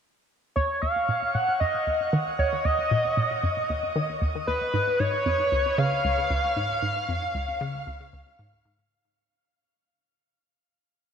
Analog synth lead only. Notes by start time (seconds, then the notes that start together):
0.56 C#5
0.82 F5
1.34 F#5
1.60 D#5
2.39 C#5
2.65 D#5
4.47 B4
4.99 C#5
5.78 F5